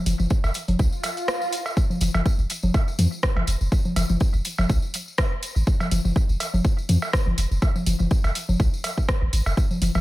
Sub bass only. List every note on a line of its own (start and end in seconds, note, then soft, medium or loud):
0.06 0.14 F1 loud
0.20 0.26 F1 medium
0.44 0.51 F1 loud
0.68 0.75 F1 medium
0.79 0.88 C2 loud
2.01 2.09 F1 loud
2.15 2.21 F1 medium
2.39 2.46 F1 loud
2.63 2.70 F1 medium
2.99 3.07 F2 medium
3.36 3.43 F1 medium
3.48 3.56 F1 medium
3.61 3.68 F1 medium
3.96 4.05 F1 loud
4.10 4.16 F1 medium
4.34 4.41 F1 loud
4.59 4.65 F1 medium
4.70 4.78 C2 loud
5.56 5.63 G#1 medium
5.92 6.00 F1 loud
6.05 6.12 F1 medium
6.29 6.36 F1 loud
6.54 6.60 F1 medium
6.89 6.97 F2 medium
7.27 7.34 F1 medium
7.38 7.46 F1 medium
7.51 7.58 F1 medium
7.87 7.95 F1 loud
8.00 8.07 F1 medium
8.24 8.31 F1 loud
8.49 8.56 F1 medium
8.60 8.68 C2 loud
9.22 9.29 G#1 medium
9.33 9.41 G#1 loud
9.46 9.53 F1 medium
9.82 9.90 F1 loud
9.95 10.01 F1 medium